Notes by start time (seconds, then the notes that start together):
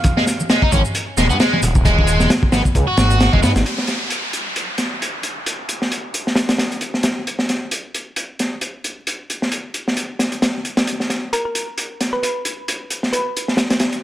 Already playing: F5
0.04 kick, closed hi-hat, high conga, shaker
0.17 G#3, snare
0.27 snare, closed hi-hat, shaker
0.40 high conga, shaker
0.50 G#3, snare, closed hi-hat, shaker
0.62 D#4, kick
0.72 G#1 C#4, kick, closed hi-hat, high conga, shaker
0.85 shaker
0.95 closed hi-hat, shaker
1.17 D#1 G#3, snare, closed hi-hat, high conga, shaker
1.30 G#2 B3, shaker
1.40 G#3, snare, closed hi-hat, shaker
1.53 G#3, high conga
1.62 D#1, closed hi-hat, low conga, shaker
1.75 kick, shaker
1.85 G#3, kick, closed hi-hat, high conga, shaker
1.99 kick
2.07 closed hi-hat, shaker
2.20 snare, high conga, shaker
2.30 snare, closed hi-hat, shaker
2.43 kick
2.52 G#1 B3, snare, closed hi-hat, high conga, shaker
2.65 kick, shaker
2.75 C#2, kick, closed hi-hat, shaker
2.88 F#4
2.97 G#1, snare, closed hi-hat, high conga, shaker
3.10 closed hi-hat, shaker
3.20 snare, closed hi-hat, shaker
3.33 F#1 G#3, kick, high conga, low conga
3.43 G#2 B3, snare, closed hi-hat, low conga, shaker
3.55 G#1, snare, closed hi-hat, shaker
3.65 closed hi-hat, downlifter
3.78 snare
3.87 snare, closed hi-hat
4.10 closed hi-hat
4.33 closed hi-hat
4.56 closed hi-hat
4.78 snare, closed hi-hat
5.02 closed hi-hat
5.23 closed hi-hat
5.46 closed hi-hat
5.69 closed hi-hat
5.82 snare
5.92 closed hi-hat
6.14 closed hi-hat
6.27 snare
6.36 snare, closed hi-hat
6.49 snare, closed hi-hat
6.58 snare, closed hi-hat
6.72 closed hi-hat
6.81 closed hi-hat
6.94 snare
7.03 snare, closed hi-hat
7.27 closed hi-hat
7.39 snare
7.49 snare, closed hi-hat
7.71 closed hi-hat
7.94 closed hi-hat
8.16 closed hi-hat
8.39 snare, closed hi-hat
8.61 closed hi-hat
8.84 closed hi-hat
9.07 closed hi-hat
9.30 closed hi-hat
9.42 snare
9.52 closed hi-hat
9.74 closed hi-hat
9.88 snare
9.97 closed hi-hat
10.19 snare, closed hi-hat
10.32 closed hi-hat
10.42 snare, closed hi-hat
10.65 closed hi-hat
10.77 snare, closed hi-hat
10.87 closed hi-hat
11.00 snare
11.10 snare, closed hi-hat
11.33 A#4, closed hi-hat
11.45 A#4
11.55 closed hi-hat
11.78 closed hi-hat
12.01 snare, closed hi-hat
12.13 B4
12.23 B4, closed hi-hat
12.45 closed hi-hat
12.68 closed hi-hat
12.90 closed hi-hat
13.03 snare
13.13 B4, closed hi-hat
13.37 closed hi-hat
13.48 snare
13.57 snare, closed hi-hat
13.70 snare, closed hi-hat
13.80 snare, closed hi-hat
13.92 closed hi-hat